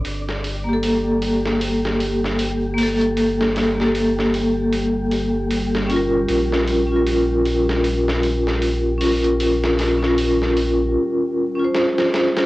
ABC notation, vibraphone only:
X:1
M:4/4
L:1/16
Q:"Swing 16ths" 1/4=77
K:Gm
V:1 name="Vibraphone"
z3 [B,GA]8- [B,GA]3 [B,GA]2- | [B,GA]3 [B,GA]8- [B,GA]3 [^CFB]2- | [^CFB]3 [_DFB]8- [DFB]3 [DFB]2- | [_DFB]3 [DFB]8 [DFc]4- [DFc] |]